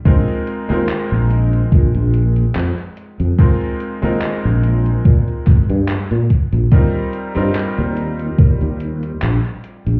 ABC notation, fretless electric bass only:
X:1
M:4/4
L:1/16
Q:"Swing 16ths" 1/4=72
K:Bbmix
V:1 name="Fretless electric bass" clef=bass
B,,, z2 E,, z B,,,2 z B,,, B,,,2 z F,, z2 F,, | z3 E,, z B,,,2 z B,, z A,,, G,, z B,, z B,,, | E,, z2 G,, z E,,2 z E,, E,,2 z B,,, z2 B,,, |]